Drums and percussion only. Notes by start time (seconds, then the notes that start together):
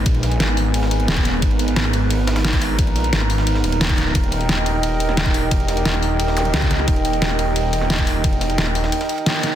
0.06 kick, closed hi-hat, ride
0.14 ride
0.23 snare, closed hi-hat, ride
0.32 closed hi-hat, ride
0.40 snare, closed hi-hat, ride
0.49 snare
0.57 open hi-hat
0.74 closed hi-hat, ride
0.83 snare
0.91 closed hi-hat, ride
1.00 ride
1.08 snare, closed hi-hat, ride
1.17 kick
1.25 snare, closed hi-hat, ride
1.34 snare
1.42 kick, closed hi-hat, ride
1.51 ride
1.59 closed hi-hat, ride
1.68 closed hi-hat
1.76 snare, closed hi-hat, ride
1.85 snare
1.93 closed hi-hat, ride
2.10 closed hi-hat, ride
2.27 snare, closed hi-hat, ride
2.36 snare, ride
2.45 snare, closed hi-hat, ride
2.53 kick, snare, ride
2.62 closed hi-hat, open hi-hat
2.79 kick, closed hi-hat, ride
2.87 ride
2.96 snare, closed hi-hat, ride
3.04 closed hi-hat, ride
3.13 snare, closed hi-hat, ride
3.21 snare
3.30 open hi-hat, ride
3.38 snare
3.47 closed hi-hat, ride
3.55 snare
3.64 closed hi-hat, ride
3.72 closed hi-hat, ride
3.81 snare, closed hi-hat, ride
3.89 kick
3.98 snare, closed hi-hat, ride
4.15 kick, closed hi-hat, ride
4.24 ride
4.32 closed hi-hat, ride
4.41 closed hi-hat
4.49 snare, closed hi-hat, ride
4.58 snare
4.66 closed hi-hat, ride
4.83 closed hi-hat, ride
5.00 closed hi-hat, ride
5.09 snare
5.17 snare, closed hi-hat, ride
5.26 kick
5.34 closed hi-hat, open hi-hat
5.51 kick, closed hi-hat, ride
5.60 ride
5.68 snare, closed hi-hat, ride
5.77 closed hi-hat, ride
5.85 snare, closed hi-hat, ride
5.94 snare
6.03 open hi-hat
6.20 closed hi-hat, ride
6.28 snare
6.37 closed hi-hat, ride
6.45 ride
6.54 snare, closed hi-hat, ride
6.62 kick
6.71 snare, closed hi-hat, ride
6.79 snare
6.88 kick, closed hi-hat, ride
6.96 ride
7.05 closed hi-hat, ride
7.13 closed hi-hat
7.22 snare, closed hi-hat, ride
7.30 snare
7.39 closed hi-hat, ride
7.56 closed hi-hat, ride
7.73 closed hi-hat, ride
7.81 snare
7.90 snare, closed hi-hat, ride
7.99 kick
8.07 closed hi-hat, open hi-hat
8.24 kick, closed hi-hat, ride
8.33 ride
8.41 snare, closed hi-hat, ride
8.50 closed hi-hat, ride
8.58 snare, closed hi-hat, ride
8.67 snare
8.75 open hi-hat, ride
8.84 snare
8.92 closed hi-hat, ride
9.01 snare, closed hi-hat
9.09 closed hi-hat, ride
9.18 ride
9.26 snare, closed hi-hat, ride
9.43 snare, closed hi-hat, ride